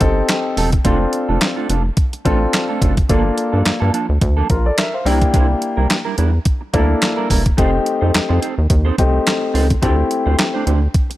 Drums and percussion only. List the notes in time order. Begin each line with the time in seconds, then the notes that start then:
0.01 kick, closed hi-hat
0.29 snare, clap, closed hi-hat
0.57 open hi-hat
0.72 kick, closed hi-hat
0.85 kick, closed hi-hat
1.13 closed hi-hat
1.41 snare, clap, closed hi-hat
1.70 closed hi-hat
1.97 kick, closed hi-hat
2.13 closed hi-hat
2.25 kick, closed hi-hat
2.53 snare, clap, closed hi-hat
2.82 kick, closed hi-hat
2.97 kick, closed hi-hat
3.09 kick, closed hi-hat
3.38 closed hi-hat
3.65 snare, clap, closed hi-hat
3.94 closed hi-hat
4.21 kick, closed hi-hat
4.50 kick, closed hi-hat
4.78 snare, clap, closed hi-hat
5.06 open hi-hat
5.22 kick, closed hi-hat
5.34 kick, closed hi-hat
5.62 closed hi-hat
5.90 snare, clap, closed hi-hat
6.18 closed hi-hat
6.45 kick, closed hi-hat
6.74 kick, closed hi-hat
7.02 snare, clap, closed hi-hat
7.30 kick, open hi-hat
7.46 kick, closed hi-hat
7.58 kick, closed hi-hat
7.86 closed hi-hat
8.14 snare, clap, closed hi-hat
8.42 closed hi-hat
8.70 kick, closed hi-hat
8.98 kick, closed hi-hat
9.27 snare, clap, closed hi-hat
9.55 open hi-hat
9.70 kick, closed hi-hat
9.83 kick, closed hi-hat
10.11 closed hi-hat
10.39 snare, clap, closed hi-hat
10.67 closed hi-hat
10.94 kick, closed hi-hat
11.11 closed hi-hat